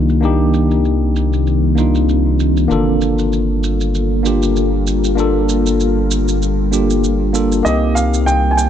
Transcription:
Already playing: C2 C3 D#3 A#3 D4 D#4 F4 D5
0.09 shaker
0.21 A#3 C4 D4 D#4, shaker
0.25 G4
0.54 shaker
0.71 shaker
0.85 shaker
1.16 shaker
1.33 shaker
1.47 shaker
1.75 A#3 D4 D#4, shaker
1.79 F4
1.95 shaker
2.09 shaker
2.40 shaker
2.57 shaker
2.68 G1 G3 A#3 D4 F4 A4, shaker
2.72 A4
3.01 shaker
3.19 shaker
3.33 shaker
3.64 shaker
3.81 shaker
3.95 shaker
4.23 A#3 D4 F4, shaker
4.27 G4
4.43 shaker
4.56 shaker
4.87 shaker
5.04 shaker
5.16 A#3 D4 F4, shaker
5.20 A4
5.49 shaker
5.66 shaker
5.80 shaker
6.11 shaker
6.28 shaker
6.42 shaker
6.71 A#3 D4 F4 G4, shaker
6.90 shaker
7.04 shaker
7.33 A#3 D4 F4 A4, shaker
7.52 shaker
7.63 C2 C3 D#3 A#3 C4 D#4 C5 D#5, shaker
7.67 G4
7.95 F5, shaker
8.14 shaker
8.26 G5, shaker
8.51 G#5
8.57 G5, shaker

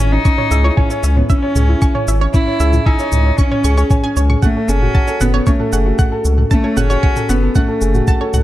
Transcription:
Already playing: C#4 E4 G#4 G#5
0.00 G#1 C#5
0.12 D#4 C#5
0.25 C#4 C#6, kick, shaker
0.38 C#5, mid tom
0.51 C#2 G#4 E5, shaker
0.64 E4 C#5
0.70 D#4
0.77 C#4 C#5 G#5, kick, mid tom
0.90 C#5, shaker
1.03 C#2 C#5 E5, shaker
1.16 B3 C#5, mid tom
1.29 C#4 E5, kick, shaker
1.42 C#5
1.55 C#2 G#4, mid tom, shaker
1.69 E4
1.82 G#5 C#6, kick, shaker
1.95 C#5, mid tom
2.08 G#1 C#5 E5, shaker
2.21 C#5
2.33 C#4 E4 C#5, kick, mid tom, shaker
2.47 C#5
2.60 C#2 G#4 E5, shaker
2.73 E4, mid tom, shaker
2.86 D#4 E5 G#5, kick
2.99 C#5, shaker
3.12 C#2 C#5, mid tom, shaker
3.25 C#5
3.37 C#4 C#6, kick, shaker
3.51 C#5, mid tom
3.64 C#2 G#4 C#6, shaker
3.77 G#4 C#5, shaker
3.90 C#5 G#5, kick, mid tom, shaker
4.04 C#4 G#5
4.16 C#2 C#4 C#5, shaker
4.30 G#4 C#6, mid tom
4.42 A3 C#4 F#5, kick, mid tom, shaker
4.56 A4
4.68 F#1 C#4 G#4, shaker
4.82 F#4, mid tom
4.95 F#5 A5, kick
5.08 A4 C#5, shaker
5.21 F#1 B3 A4 F#5, mid tom, shaker
5.34 A4 C#5
5.47 A3 C#4 C#5, kick, shaker
5.60 A4, mid tom
5.73 F#1 G#4 F#5, shaker
5.86 F#4
5.99 F#5, kick, mid tom, shaker
6.12 A4
6.25 C#2 A4, shaker
6.38 A4, mid tom
6.51 A3 C#4 A5, kick, shaker
6.64 A4 C#5
6.77 F#1 C#4 G#4 F#5, mid tom, shaker
6.90 F#4 C#5, shaker
7.03 C#5 F#5, kick
7.16 A4, mid tom, shaker
7.29 F#1 B3 A4 F#5, shaker
7.42 A4
7.55 A3 C#4 F#5, kick, mid tom, shaker
7.68 A4
7.81 F#1 G#4, shaker
7.94 F#4, mid tom, shaker
8.08 F#5 A5, kick, shaker
8.20 A4 C#5
8.34 C#2 A4 F#5, mid tom, shaker

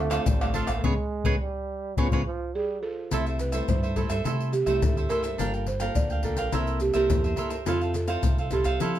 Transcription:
Already playing: D2 D3 A3
0.10 A3 C4 F4 A4 C5 F5, pandeiro, tamborim, maracas
0.26 A1 A2 G3, pandeiro, maracas, surdo
0.41 A4 C5 F5, pandeiro, tamborim, maracas
0.54 A3 C4 D4 F4 A4 C5 F5, pandeiro
0.67 A1 A4 C5 F5, pandeiro, tamborim, maracas
0.77 A#3
0.83 C#2 G#3 B3 C#4 G#4 B4 C#5, surdo
1.24 C#2 G#3 B3 C#4 G#4 B4 C#5, surdo
1.41 G3
1.97 C#2 F3 G#3 B3 C#4 G#4 B4 C#5, surdo
2.12 C#2 G#3 B3 C#4 G#4 B4 C#5, surdo
2.25 F3
2.55 G3 G#4
2.83 F3 A4
3.11 C2 C3 G3 A3 E4 A4 C5 E5, pandeiro, maracas, surdo
3.26 A4 C5 E5, pandeiro, maracas
3.39 B4, muted cavaquinho stroke, pandeiro, maracas
3.52 G3 A3 E4 A4 C5 E5, pandeiro, maracas
3.68 G2 C5, pandeiro, maracas, surdo
3.83 A4 C5 E5, pandeiro, maracas
3.96 G3 A3 E4 A4 C5 E5, pandeiro, surdo
4.09 G2 A4 C5 E5, pandeiro, maracas
4.24 C3 G3 A3 E4 A4 C5 E5, pandeiro, maracas, surdo
4.40 pandeiro, maracas
4.53 G4, muted cavaquinho stroke, pandeiro, maracas
4.66 C2 G3 A3 E4 G4 A4 C5 E5, pandeiro, maracas
4.82 D2 G2 A4, pandeiro, maracas, surdo
4.97 A4 C5 E5, pandeiro, maracas
5.09 G3 A3 E4 A4 A#4 C5 E5, pandeiro, maracas
5.22 A4 C5 E5, pandeiro, maracas
5.38 G1 G3 A#3 D4 F4 A4 A#4 F5 G5, pandeiro, maracas, surdo
5.53 A#4 F5 G5, pandeiro, maracas
5.66 C5, muted cavaquinho stroke, pandeiro
5.80 A#3 F4 A4 A#4 F5 G5, pandeiro, maracas
5.95 D2 D3 D5, pandeiro, maracas, surdo
6.10 A#4 F5 G5, pandeiro, maracas
6.23 A#3 D4 F4 A4 A#4 F5 G5, pandeiro, surdo
6.37 A#1 A#4 F5 G5, pandeiro, maracas
6.52 C2 C3 A#3 E4 A4 A#4 C5 E5, pandeiro, maracas, surdo
6.67 pandeiro, maracas
6.80 G4, muted cavaquinho stroke, pandeiro, maracas
6.93 C2 A#3 E4 G4 A4 A#4 C5 E5, pandeiro, maracas
7.10 E2 G2, pandeiro, maracas, surdo
7.24 A#4 C5 E5, pandeiro, maracas
7.36 A#3 E4 A4 A#4 C5 E5, pandeiro
7.50 A#4 C5 E5, pandeiro, maracas
7.66 F2 F3 C4 E4 F4 A4 C5 F5, pandeiro, maracas, surdo
7.81 A4 C5 F5, pandeiro, maracas
7.94 A4, muted cavaquinho stroke, pandeiro, maracas
8.07 C4 E4 A4 C5 F5, pandeiro, maracas
8.23 C2 C3, pandeiro, maracas, surdo
8.38 A4 C5 F5, pandeiro, maracas
8.51 C4 E4 G4 A4 C5 F5, pandeiro, maracas, surdo
8.64 C2 A4 C5 F5, pandeiro, maracas
8.80 F3 C4 E4 A4 C5 F5, pandeiro, maracas, surdo
8.95 pandeiro, maracas

